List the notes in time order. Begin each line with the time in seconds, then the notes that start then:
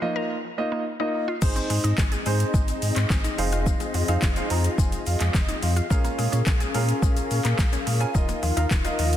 Already playing: noise sweep
0.02 F3 A#3 D#4 F4 D#5
0.16 A#4
0.58 A#3 D#4 F4 D#5
0.72 A#3
1.00 A#3 D#4 F4 D#5
1.28 F4
1.42 G#1 G#3 C4 D#4 G#4 C5 D#5, kick, crash, shaker
1.56 C4, closed hi-hat, shaker
1.70 G#2 G#3, open hi-hat, shaker
1.84 G#2 D#4, closed hi-hat, shaker
1.98 G#1 G#3, kick, snare, clap, shaker
2.12 G#4, closed hi-hat, shaker
2.26 G#2 G#3 D#4 G#4 C5, open hi-hat, shaker
2.40 closed hi-hat, shaker
2.54 G#1 G#3, kick, shaker
2.68 closed hi-hat, shaker
2.82 G#2, open hi-hat, shaker
2.96 G#2 C4, clap, closed hi-hat, shaker
3.10 G#1 G#3, kick, snare, clap, shaker
3.24 D#4, closed hi-hat, shaker
3.38 F1 F3 D#4 F4 G#4 C5 F5, open hi-hat, shaker
3.52 F4, closed hi-hat, shaker
3.66 F3, kick, shaker
3.80 G#3, closed hi-hat, shaker
3.94 F2 F3, open hi-hat, shaker
4.08 F2 D#4 F4 G#4 C5 F5, closed hi-hat, shaker
4.22 F1 F3, kick, snare, clap, shaker
4.36 D#4 F4 G#4 C5 F5, closed hi-hat, shaker
4.50 F2 F3 A#5, open hi-hat, shaker
4.64 closed hi-hat, shaker
4.78 F1 F3 G#5, kick, shaker
4.92 closed hi-hat, shaker
5.06 F2 F5, open hi-hat, shaker
5.20 F2 G#3, clap, closed hi-hat, shaker
5.34 F1 F3 D#5, kick, snare, clap, shaker
5.48 D#4, closed hi-hat, shaker
5.62 F2 F3 F5, open hi-hat, shaker
5.76 F4, closed hi-hat, shaker
5.90 A#1 G#3 C#4 F4 G#4 A#4 F5, kick, shaker
6.04 A#3, closed hi-hat, shaker
6.18 A#2 G#3, open hi-hat, shaker
6.32 A#2 C#4, closed hi-hat, shaker
6.46 A#1 G#3, kick, snare, clap, shaker
6.60 G#4, closed hi-hat, shaker
6.74 A#2 G#3 C#4 F4 G#4 A#4 F5, open hi-hat, shaker
6.89 closed hi-hat, shaker
7.02 A#1 G#3, kick, shaker
7.17 closed hi-hat, shaker
7.31 A#2, open hi-hat, shaker
7.45 A#2 A#3, clap, closed hi-hat, shaker
7.59 A#1 G#3, kick, snare, clap, shaker
7.73 C#4, closed hi-hat, shaker
7.86 A#2 G#3, open hi-hat, shaker
8.00 C#4 F4 G#4 A#4 G#5, closed hi-hat, shaker
8.14 D#1 F3 D#4 F4 A#4 D#5, kick, shaker
8.29 A#3, closed hi-hat, shaker
8.43 D#2 F3, open hi-hat, shaker
8.57 D#2 D#4 F4 A#4 F5, closed hi-hat, shaker
8.71 D#1 F3, kick, snare, clap, shaker
8.85 F4 A#4 D#5, closed hi-hat, shaker
8.99 D#2 F3, open hi-hat, shaker
9.13 closed hi-hat, shaker